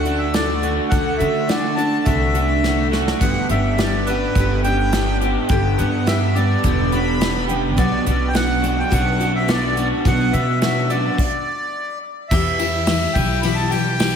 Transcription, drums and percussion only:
0.05 closed hi-hat medium
0.34 snare loud
0.34 closed hi-hat medium
0.63 closed hi-hat medium
0.92 kick loud
0.92 closed hi-hat medium
1.20 closed hi-hat medium
1.49 snare loud
1.49 closed hi-hat medium
1.78 closed hi-hat medium
2.06 kick medium
2.06 closed hi-hat medium
2.35 closed hi-hat medium
2.64 snare medium
2.93 snare medium
3.08 snare medium
3.21 kick loud
3.21 closed hi-hat loud
3.21 splash medium
3.49 closed hi-hat medium
3.78 snare loud
3.78 closed hi-hat medium
4.07 closed hi-hat medium
4.35 kick medium
4.35 closed hi-hat loud
4.64 closed hi-hat medium
4.92 snare loud
4.92 closed hi-hat loud
5.21 closed hi-hat medium
5.49 kick loud
5.49 closed hi-hat medium
5.78 closed hi-hat medium
6.07 snare loud
6.07 closed hi-hat medium
6.36 closed hi-hat medium
6.64 kick medium
6.64 closed hi-hat medium
6.92 closed hi-hat medium
7.21 snare loud
7.21 closed hi-hat medium
7.49 closed hi-hat medium
7.78 kick loud
7.78 closed hi-hat medium
8.06 closed hi-hat medium
8.35 snare loud
8.35 closed hi-hat medium
8.64 closed hi-hat medium
8.92 kick medium
8.92 closed hi-hat loud
9.21 closed hi-hat medium
9.48 snare loud
9.48 closed hi-hat loud
9.77 closed hi-hat medium
10.05 kick loud
10.05 closed hi-hat medium
10.33 closed hi-hat medium
10.62 snare loud
10.62 closed hi-hat medium
10.90 closed hi-hat medium
11.18 kick loud
11.18 crash loud
12.31 kick loud
12.31 crash loud
12.59 ride medium
12.87 snare loud
12.87 ride loud
13.15 kick loud
13.15 ride medium
13.43 ride loud
13.72 ride medium
14.00 snare loud
14.00 ride loud

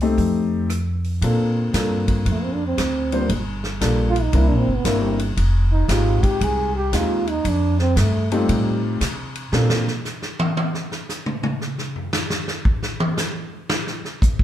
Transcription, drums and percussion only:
0.01 open hi-hat soft
0.18 kick soft
0.18 open hi-hat soft
0.70 cross-stick medium
0.70 closed hi-hat soft
1.04 open hi-hat soft
1.22 kick soft
1.22 ride medium
1.74 kick soft
1.74 snare medium
1.74 hi-hat pedal medium
1.74 ride medium
2.08 kick medium
2.08 ride medium
2.26 kick soft
2.26 ride medium
2.78 kick soft
2.78 snare medium
2.78 hi-hat pedal medium
2.78 ride medium
3.12 ride soft
3.29 kick soft
3.29 ride medium
3.64 snare soft
3.81 kick soft
3.81 snare medium
3.81 hi-hat pedal medium
3.81 ride medium
4.16 ride soft
4.33 kick soft
4.33 ride medium
4.85 kick soft
4.85 snare medium
4.85 hi-hat pedal soft
4.85 ride medium
5.19 ride soft
5.37 kick soft
5.37 ride medium
5.89 kick soft
5.89 snare medium
5.89 hi-hat pedal medium
5.89 ride medium
6.23 kick medium
6.23 ride soft
6.41 kick soft
6.41 ride medium
6.93 kick soft
6.93 snare medium
6.93 hi-hat pedal medium
6.93 ride medium
7.27 ride soft
7.45 kick soft
7.45 ride medium
7.79 snare soft
7.97 kick soft
7.97 snare medium
7.97 hi-hat pedal medium
7.97 ride medium
8.32 ride medium
8.49 kick soft
8.49 ride medium
9.01 kick soft
9.01 snare medium
9.01 hi-hat pedal medium
9.01 ride medium
9.35 ride soft
9.53 snare loud
9.70 snare loud
9.88 snare soft
10.05 snare soft
10.05 hi-hat pedal medium
10.22 snare soft
10.39 high tom loud
10.57 high tom loud
10.74 snare soft
10.92 snare soft
11.09 snare medium
11.09 hi-hat pedal medium
11.26 mid tom loud
11.43 mid tom loud
11.61 snare soft
11.78 snare soft
11.96 floor tom medium
12.13 snare loud
12.13 hi-hat pedal medium
12.30 snare medium
12.48 snare medium
12.65 kick medium
12.83 snare medium
13.00 high tom loud
13.18 snare medium
13.18 hi-hat pedal medium
13.70 snare loud
13.87 snare soft
14.05 snare soft
14.22 kick medium
14.22 hi-hat pedal medium
14.39 kick medium

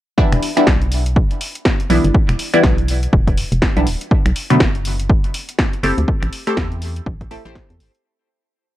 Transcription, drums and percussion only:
0.18 kick loud
0.32 finger snap medium
0.32 closed hi-hat medium
0.42 open hi-hat loud
0.57 finger snap medium
0.57 closed hi-hat medium
0.67 kick loud
0.67 snare loud
0.82 closed hi-hat soft
0.92 open hi-hat medium
1.06 closed hi-hat medium
1.16 kick loud
1.31 closed hi-hat soft
1.41 open hi-hat loud
1.55 closed hi-hat medium
1.65 kick loud
1.65 snare loud
1.80 closed hi-hat medium
1.90 open hi-hat medium
2.05 closed hi-hat medium
2.15 kick loud
2.29 finger snap medium
2.29 closed hi-hat medium
2.39 open hi-hat loud
2.54 finger snap medium
2.54 closed hi-hat medium
2.64 kick loud
2.64 snare loud
2.78 closed hi-hat soft
2.88 open hi-hat loud
3.03 closed hi-hat medium
3.13 kick loud
3.27 kick medium
3.27 closed hi-hat soft
3.38 open hi-hat loud
3.52 closed hi-hat medium
3.62 kick loud
3.62 snare loud
3.77 closed hi-hat medium
3.87 open hi-hat loud
4.01 closed hi-hat medium
4.11 kick loud
4.26 finger snap medium
4.26 closed hi-hat medium
4.36 open hi-hat loud
4.50 finger snap medium
4.50 closed hi-hat medium
4.60 kick loud
4.60 snare loud
4.75 closed hi-hat soft
4.85 open hi-hat loud
5.00 closed hi-hat medium
5.10 kick loud
5.24 closed hi-hat soft
5.34 open hi-hat loud
5.49 closed hi-hat medium
5.59 kick loud
5.59 snare loud
5.73 closed hi-hat medium
5.83 open hi-hat loud
5.98 closed hi-hat medium
6.08 kick loud
6.23 finger snap medium
6.23 closed hi-hat medium
6.33 open hi-hat loud
6.47 finger snap medium
6.47 closed hi-hat medium
6.57 kick loud
6.57 snare loud
6.72 closed hi-hat soft
6.82 open hi-hat medium
6.96 closed hi-hat medium
7.06 kick loud
7.21 kick medium
7.21 closed hi-hat soft
7.31 open hi-hat loud
7.46 closed hi-hat medium
7.55 kick loud
7.55 snare loud
7.70 closed hi-hat medium
7.80 open hi-hat loud
7.95 closed hi-hat medium

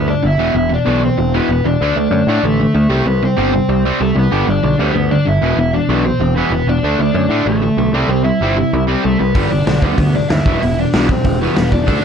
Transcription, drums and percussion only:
9.35 kick loud
9.35 open hi-hat medium
9.67 snare loud
9.67 open hi-hat medium
9.82 kick medium
9.98 kick loud
9.98 open hi-hat medium
10.30 snare loud
10.30 open hi-hat medium
10.46 kick loud
10.63 open hi-hat soft
10.93 snare loud
10.93 open hi-hat medium
11.09 kick medium
11.24 kick loud
11.24 open hi-hat medium
11.56 snare loud
11.56 open hi-hat medium
11.72 kick medium
11.88 kick medium
11.88 open hi-hat medium

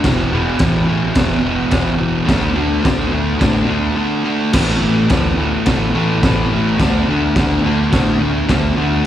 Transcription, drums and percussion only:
0.04 kick loud
0.04 snare loud
0.04 crash medium
0.59 kick loud
0.59 snare loud
0.59 crash medium
1.15 kick loud
1.15 snare loud
1.15 crash medium
1.71 kick loud
1.71 snare loud
1.71 crash medium
2.29 kick loud
2.29 snare loud
2.29 crash medium
2.85 kick loud
2.85 snare loud
2.85 crash medium
3.41 kick loud
3.41 snare loud
3.41 crash medium
4.53 kick loud
4.53 snare loud
4.53 crash loud
4.53 crash medium
5.10 kick loud
5.10 snare loud
5.10 crash medium
5.66 kick loud
5.66 snare loud
5.66 crash medium
6.23 kick loud
6.23 snare loud
6.23 crash medium
6.80 kick loud
6.80 snare loud
6.80 crash medium
7.36 kick loud
7.36 snare loud
7.36 crash medium
7.92 kick loud
7.92 snare loud
7.92 crash medium
8.49 kick loud
8.49 snare loud
8.49 crash medium

